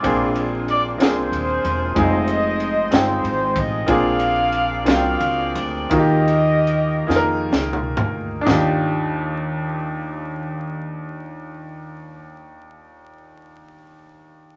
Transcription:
Already playing: horn section F4 G#4 D5
0.02 upright bass A#1, upright piano A#2 A#3 C4 D4 F4 G#4, kick, ride
0.35 ride
0.68 horn section D5, ride
0.98 upright bass C2, upright piano A#3 C4 D4 F4 G#4, horn section F4 G#4 C5, snare, ride
1.32 upright bass D#1, ride
1.64 upright bass E1, ride
1.95 upright bass F1, upright piano G#3 C4 D#4 F4 G#4, horn section G#4 C5 D#5, kick, ride
2.28 ride
2.60 ride
2.91 upright bass G1, upright piano G#3 C4 D#4 F4 G5, snare, ride
2.95 horn section D#4 G#4 C5
3.24 upright bass G#1, ride
3.56 upright bass A1, horn section D#5, kick, ride
3.86 upright bass A#1, upright piano A#2 A#3 C4 D4 F4 G#4, horn section G#4 D5 F5, kick, ride
4.20 ride
4.52 ride
4.84 upright bass C2, upright piano A#3 C4 D4 F4 F#4, horn section D5 F5, snare, ride
4.89 horn section G#4
4.94 upright piano G5
5.20 upright bass C#2, ride
5.55 upright bass D2, ride
5.90 upright bass D#2, upright piano D#3 A#3 D#4 F4 F#4, horn section G4 A#4 D#5, kick, ride
5.99 upright piano G4
6.28 ride
6.67 ride
7.07 upright bass F2, upright piano A#3 D#4 F4 G#4, snare
7.16 upright piano A#4
7.51 upright bass C#2, snare
7.73 mid tom
7.97 upright bass D2, floor tom
8.41 upright piano D4 D#4
8.47 upright bass D#2, upright piano D#2 F4, snare, floor tom
8.53 upright piano G4

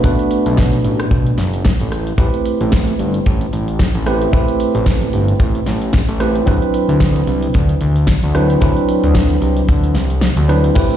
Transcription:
0.03 analog synth bass B1, tine electric piano A3 B3 D4 F#4 B4, kick, closed hi-hat
0.19 closed hi-hat
0.31 open hi-hat
0.46 analog synth bass B1, closed hi-hat
0.57 kick, snare, closed hi-hat
0.73 closed hi-hat
0.85 analog synth bass A1, open hi-hat
1.00 cross-stick, closed hi-hat
1.11 analog synth bass B1, kick, closed hi-hat
1.27 closed hi-hat
1.38 analog synth bass F#1, snare, open hi-hat
1.54 closed hi-hat
1.65 kick, snare, closed hi-hat
1.80 analog synth bass A1, closed hi-hat
1.92 cross-stick, open hi-hat
2.07 closed hi-hat
2.18 analog synth bass A1, tine electric piano A3 C4 E4 G4 B4, kick, closed hi-hat
2.34 closed hi-hat
2.46 open hi-hat
2.61 analog synth bass A1, closed hi-hat
2.72 kick, snare, closed hi-hat
2.88 closed hi-hat
2.99 analog synth bass G1, open hi-hat
3.14 closed hi-hat
3.26 analog synth bass A1, kick, closed hi-hat
3.41 closed hi-hat
3.53 analog synth bass A1, open hi-hat
3.68 closed hi-hat
3.79 kick, snare, closed hi-hat
3.95 analog synth bass A1, closed hi-hat
4.06 tine electric piano A3 C4 E4 G4 B4, cross-stick, open hi-hat
4.22 closed hi-hat
4.32 analog synth bass A1, tine electric piano A3 C4 E4 G4 B4, kick, closed hi-hat
4.48 closed hi-hat
4.60 open hi-hat
4.75 analog synth bass A1, closed hi-hat
4.86 kick, snare, closed hi-hat
5.02 closed hi-hat
5.13 analog synth bass G1, open hi-hat
5.28 closed hi-hat
5.40 analog synth bass A1, kick, closed hi-hat
5.55 closed hi-hat
5.66 analog synth bass A1, snare, open hi-hat
5.82 closed hi-hat
5.93 kick, snare, closed hi-hat
6.09 analog synth bass A1, closed hi-hat
6.20 tine electric piano A3 C4 E4 G4 B4, cross-stick, open hi-hat
6.36 closed hi-hat
6.46 analog synth bass D2, tine electric piano F#3 C4 D4 E4 B4, kick, closed hi-hat
6.62 closed hi-hat
6.74 open hi-hat
6.89 analog synth bass D2, closed hi-hat
7.00 kick, snare, closed hi-hat
7.16 closed hi-hat
7.27 analog synth bass C2, open hi-hat
7.43 closed hi-hat
7.54 analog synth bass D2, kick, closed hi-hat
7.69 closed hi-hat
7.81 analog synth bass D2, open hi-hat
7.96 closed hi-hat
8.07 kick, snare, closed hi-hat
8.23 analog synth bass D2, closed hi-hat
8.34 tine electric piano F#3 C4 D4 E4 B4, cross-stick, open hi-hat
8.50 closed hi-hat
8.61 analog synth bass D2, tine electric piano F#3 C4 D4 E4 B4, kick, closed hi-hat
8.77 closed hi-hat
8.89 open hi-hat
9.04 analog synth bass D2, closed hi-hat
9.15 kick, snare, closed hi-hat
9.30 closed hi-hat
9.42 analog synth bass C2, open hi-hat
9.57 closed hi-hat
9.69 analog synth bass D2, kick, closed hi-hat
9.84 closed hi-hat
9.95 analog synth bass C2, snare, open hi-hat
10.10 closed hi-hat
10.21 snare, closed hi-hat
10.37 analog synth bass D2, closed hi-hat
10.49 tine electric piano F#3 C4 D4 E4 B4, cross-stick, open hi-hat
10.64 closed hi-hat
10.74 analog synth bass A1, tine electric piano A3 C4 E4 G4 B4, kick, closed hi-hat, crash
10.91 closed hi-hat

